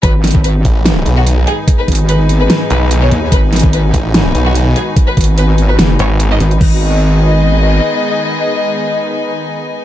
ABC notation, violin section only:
X:1
M:4/4
L:1/16
Q:1/4=146
K:G#m
V:1 name="Violin section"
B2 z2 B2 z4 z F2 z G2 | z B2 z B2 z B2 z B2 z c2 z | B2 z2 B2 z4 z F2 z G2 | z B2 z B2 z B2 z c2 z d2 z |
d16- | d16 |]